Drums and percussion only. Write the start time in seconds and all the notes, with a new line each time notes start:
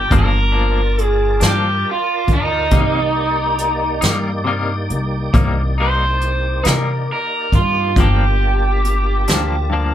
0.11 kick, closed hi-hat
0.99 closed hi-hat
1.41 snare, closed hi-hat
2.28 kick, closed hi-hat
2.71 kick, closed hi-hat
3.58 closed hi-hat
4.02 snare, closed hi-hat
4.90 closed hi-hat
5.34 kick, closed hi-hat
6.21 closed hi-hat
6.65 snare, closed hi-hat
7.52 kick, closed hi-hat
7.96 kick, closed hi-hat
8.85 closed hi-hat
9.28 snare, closed hi-hat